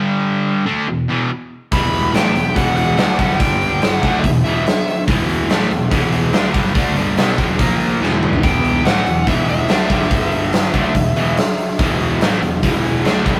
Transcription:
<<
  \new Staff \with { instrumentName = "Lead electric guitar" } { \time 4/4 \key e \minor \tempo 4 = 143 r1 | b''4 g''4 fis''8 fis''4. | g''4 fis''8.~ fis''32 dis''32 e''8 e''4. | r1 |
r1 | g''4 fis''4 e''8 e''4.~ | e''1~ | e''1 | }
  \new Staff \with { instrumentName = "Lead electric guitar" } { \clef bass \time 4/4 \key e \minor r1 | g4 b4 e8 e4. | g4 e8.~ e32 fis32 b,8 b,4. | r1 |
r1 | b4 e4 b,8 b,4.~ | b,1~ | b,1 | }
  \new Staff \with { instrumentName = "Distorted electric guitar" } { \clef bass \time 4/4 \key e \minor <g, d g>4. <d a d'>8 <e, b,>8 <e, b, e>8 r4 | <e, b, e>4 <a, e a>8 <e, b,>8 <e, b, e>4 <d a d'>8 <g, d g>8~ | <g, d g>4. <d a d'>8 <e, b,>8 <e, b, e>8 r4 | <e, b, e>4 <a, e a>8 <e, b,>8 <e, b, e>4 <d a d'>8 <g, d g>8 |
<d a d'>8 <g, d g>8 <b, fis b>8 <e, b, e>8 <ais, eis ais>4 <e, b, e>4 | <e, b, e>4 <a, e a>8 <e, b,>8 <e, b, e>4 <d a d'>8 <g, d g>8~ | <g, d g>4. <d a d'>8 <e, b,>8 <e, b, e>8 r4 | <e, b, e>4 <a, e a>8 <e, b,>8 <e, b, e>4 <d a d'>8 <g, d g>8 | }
  \new Staff \with { instrumentName = "Picked electric bass" } { \clef bass \time 4/4 \key e \minor r1 | e,,4 a,,8 e,,8 e,,4 d,8 g,,8~ | g,,4. d,8 e,,8 e,,8 r4 | e,,4 a,,8 e,,8 e,,4 d,8 g,,8 |
d,8 g,,8 b,,8 e,,8 ais,,4 e,,4 | e,,4 a,,8 e,,8 e,,4 d,8 g,,8~ | g,,4. d,8 e,,8 e,,8 r4 | e,,4 a,,8 e,,8 e,,4 d,8 g,,8 | }
  \new DrumStaff \with { instrumentName = "Drums" } \drummode { \time 4/4 r4 r4 r4 r4 | <hho bd>8 hho8 <hho sn>8 hho8 <hho bd>8 hho8 <hho sn>8 <hho bd>16 sn16 | <hho bd>8 hho8 <hho sn>8 <hho bd>8 <hho bd>8 hho8 <hho sn>8 hho8 | <hho bd>8 hho8 <hho sn>8 hho8 <hho bd>8 hho8 <hho sn>8 <hho bd>16 sn16 |
<hho bd>8 hho8 <hho sn>8 <hho bd>8 <hho bd>8 hho8 sn16 tommh16 toml16 tomfh16 | <hho bd>8 hho8 <hho sn>8 hho8 <hho bd>8 hho8 <hho sn>8 <hho bd>16 sn16 | <hho bd>8 hho8 <hho sn>8 <hho bd>8 <hho bd>8 hho8 <hho sn>8 hho16 sn16 | <hho bd>8 hho8 <hho sn>8 hho8 <hho bd>8 hho8 <hho sn>8 <hho bd>8 | }
>>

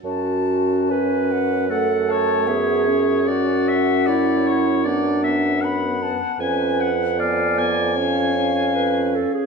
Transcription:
<<
  \new Staff \with { instrumentName = "Flute" } { \time 4/4 \key fis \minor \tempo 4 = 76 a''4 gis''8 fis''8 fis''8 a''8 e''4 | fis''2 fis''4 b''8 a''8 | gis''8 r8 gis''4 eis''2 | }
  \new Staff \with { instrumentName = "Oboe" } { \time 4/4 \key fis \minor r2 fis''8 cis''4. | d''8 e''8 d''8 cis''8 d''8 e''8 fis''4 | gis''8 fis''8 eis''8 gis''2 r8 | }
  \new Staff \with { instrumentName = "Clarinet" } { \time 4/4 \key fis \minor fis'4 b'4 a'4 gis'4 | fis'4 e'4 d'4. r8 | b'4 d''4 cis''4 b'8 a'16 gis'16 | }
  \new Staff \with { instrumentName = "French horn" } { \time 4/4 \key fis \minor cis'2 a4 b8 cis'8~ | cis'2 b8 b4. | cis'8 r8 b8 b8 cis'8 cis'4. | }
  \new Staff \with { instrumentName = "Bassoon" } { \clef bass \time 4/4 \key fis \minor fis,1~ | fis,1 | eis,2.~ eis,8 r8 | }
>>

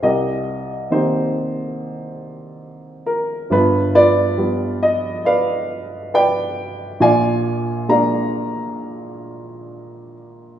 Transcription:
<<
  \new Staff \with { instrumentName = "Upright piano" } { \time 4/4 \key bes \mixolydian \tempo 4 = 68 << { ees''4 c''2~ c''8 bes'8 | b'8 d''4 ees''8 f''4 g''4 | aes''4 bes''2~ bes''8 r8 | } \\ { <g' bes'>4 <ees' g'>2~ <ees' g'>8 r8 | <b f'>8 <f' b'>4. <b' d''>4 <b' d''>4 | <d'' f''>4 <d'' f''>2~ <d'' f''>8 r8 | } >> }
  \new Staff \with { instrumentName = "Upright piano" } { \clef bass \time 4/4 \key bes \mixolydian c,4 <ees bes c'>2. | <g,, g,>4 <f g b>2. | <bes,, bes,>4 <aes bes d'>2. | }
>>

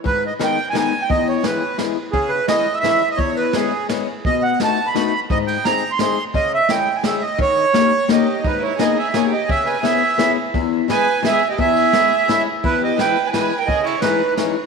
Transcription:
<<
  \new Staff \with { instrumentName = "Accordion" } { \time 3/4 \key cis \dorian \tempo 4 = 172 b'8 dis''8 g''8. gis''16 gis''8. g''16 | dis''8 cis''8 b'4 r4 | gis'8 b'8 dis''8. e''16 e''8. dis''16 | cis''8 b'8 gis'4 r4 |
dis''8 fis''8 a''8. b''16 b''8. r16 | dis''8 g''8 ais''8. bis''16 bis''8. r16 | dis''8 e''8 g''8. gis''16 e''8 dis''8 | cis''2 dis''4 |
b'8 cis''8 dis''8 e''8 cis''8 dis''8 | e''8 gis''8 e''4. r8 | r4 gis''4 \tuplet 3/2 { e''4 dis''8 } | e''2~ e''8 r8 |
b'8 dis''8 g''8. gis''16 gis''8. g''16 | dis''8 cis''8 b'4 r4 | }
  \new Staff \with { instrumentName = "Violin" } { \time 3/4 \key cis \dorian r2. | r2. | r2. | r2. |
r2. | r2. | r2. | r2 g'4 |
dis'8 e'8 gis'8 gis'8 gis'8 g'8 | gis'8 b'8 gis'4. r8 | r4 b'4 \tuplet 3/2 { gis'4 g'8 } | gis'2~ gis'8 r8 |
e'8 g'8 b'8. b'16 b'8. ais'16 | gis'8 e'8 dis'4 r4 | }
  \new Staff \with { instrumentName = "Steel-string acoustic guitar" } { \time 3/4 \key cis \dorian gis,4 <dis gis b dis'>8 r8 <dis gis b dis'>8 r8 | e,4 <e gis b e'>8 r8 <e gis b e'>8 r8 | cis4 <e gis cis' e'>8 r8 <e gis cis' e'>8 r8 | e,4 <gis b cis' e'>8 r8 <gis b cis' e'>8 r8 |
b,4 <a b dis' fis'>8 r8 <a b dis' fis'>8 r8 | gis,4 <gis bis dis' gis'>8 r8 <gis bis dis' gis'>8 r8 | cis4 <gis cis' e' gis'>8 r8 <gis cis' e' gis'>8 r8 | dis4 <ais cis' dis' g'>8 r8 <ais cis' dis' g'>8 r8 |
gis,4 <ais b dis' gis'>8 r8 <ais b dis' gis'>8 r8 | cis4 <b cis' e' gis'>8 r8 <b cis' e' gis'>8 r8 | e,4 <gis b e' gis'>8 r8 <gis b e' gis'>8 r8 | e,4 <gis b cis' e'>8 r8 <gis b cis' e'>8 r8 |
e,4 <e gis b e'>8 r8 <e gis b e'>8 r8 | cis4 <e gis cis' dis'>8 r8 <e gis cis' dis'>8 r8 | }
  \new DrumStaff \with { instrumentName = "Drums" } \drummode { \time 3/4 <bd cymr>4 <cymr sn>4 <cymr sn>4 | <bd cymr>8 cymr8 <cymr sn>4 <cymr sn>4 | <bd cymr>4 <cymr sn>4 <cymr sn>4 | <bd cymr>8 cymr8 <cymr sn>4 <cymr sn>4 |
<bd cymr>4 <cymr sn>4 <cymr sn>4 | <bd cymr>8 cymr8 <cymr sn>4 <cymr sn>4 | <bd cymr>4 <cymr sn>4 <cymr sn>4 | <bd cymr>8 cymr8 <cymr sn>4 <cymr sn>4 |
<bd cymr>4 <cymr sn>4 <cymr sn>4 | <bd cymr>8 cymr8 <cymr sn>4 <cymr sn>4 | <bd cymr>4 <cymr sn>4 <cymr sn>4 | <bd cymr>8 cymr8 <cymr sn>4 <cymr sn>4 |
<bd cymr>4 <cymr sn>4 <cymr sn>4 | <bd cymr>8 cymr8 <cymr sn>4 <cymr sn>4 | }
>>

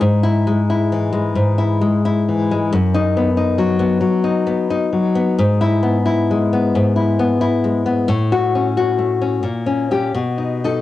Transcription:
\new Staff \with { instrumentName = "Nylon-string guitar" } { \time 4/4 \key e \major \tempo 4 = 89 << { \tuplet 3/2 { r8 e'4 } r2. | \tuplet 3/2 { r8 dis'4 } r2. | \tuplet 3/2 { r8 e'4 } r2. | \tuplet 3/2 { r8 fis'4 } r4 \tuplet 3/2 { r4 g'8 r4 a'8 } | } \\ { \tuplet 3/2 { gis,4 gis8 e'8 e8 gis8 gis,8 e'8 gis8 e'8 e8 gis8 } | \tuplet 3/2 { fis,4 b8 dis'8 fis8 b8 fis8 dis'8 b8 dis'8 fis8 b8 } | \tuplet 3/2 { gis,4 b8 e'8 gis8 b8 gis,8 e'8 b8 e'8 gis8 b8 } | \tuplet 3/2 { a,4 cis'8 fis'8 a8 cis'8 ais,8 cis'8 cis'8 b,8 dis'8 dis'8 } | } >> }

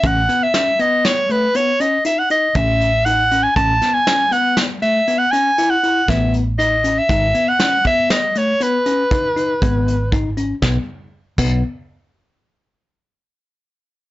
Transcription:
<<
  \new Staff \with { instrumentName = "Soprano saxophone" } { \time 7/4 \key a \lydian \tempo 4 = 119 fis''8. e''8. dis''8 cis''8 b'8 cis''8 dis''8 e''16 fis''16 dis''8 e''4 fis''8. gis''16 | a''8. gis''8. fis''8 r8 e''8. fis''16 gis''8. fis''8. e''8 r8 dis''8. e''16~ | e''8. fis''8. e''8 dis''8 cis''8 b'2. r4 | r1. r4 | }
  \new Staff \with { instrumentName = "Tine electric piano" } { \time 7/4 \key a \lydian cis'8 b8 cis'8 b4 a8 b8 cis'8 dis'8 dis'8 cis'4 dis'8 cis'8 | cis'8 b8 cis'8 b4 a8 b8 cis'8 e'8 e'8 b4 dis'8 cis'8 | dis'8 b8 cis'8 b4 a8 b8 cis'8 dis'8 dis'8 b4 dis'8 cis'8 | b8 r4 b8 r1 r4 | }
  \new Staff \with { instrumentName = "Fretless electric bass" } { \clef bass \time 7/4 \key a \lydian a,,8 r1 r8 a,,2 | a,,8 r1 r8 a,,2 | gis,,8 r1 r8 gis,,2 | b,,8 r4 b,,8 r1 r4 | }
  \new DrumStaff \with { instrumentName = "Drums" } \drummode { \time 7/4 <hh bd>8 hh8 <hh sn>8 hh8 <hh sn>8 hh8 hh8 hh8 hh8 hh8 <hh bd>8 hh8 hh8 hh8 | <hh bd>8 <hh sn>8 <hh sn>8 hh8 <hh sn>8 hh8 hh8 hh8 hh8 hh8 <hh bd sn>8 hh8 hh8 hh8 | <hh bd>8 hh8 <hh sn>8 <hh bd>8 <hh sn>8 hh8 hh8 hh8 <hh bd>8 hh8 <hh bd>8 hh8 <hh bd>8 hh8 | <bd sn>4 r8 <cymc bd>8 r4 r4 r4 r4 r4 | }
>>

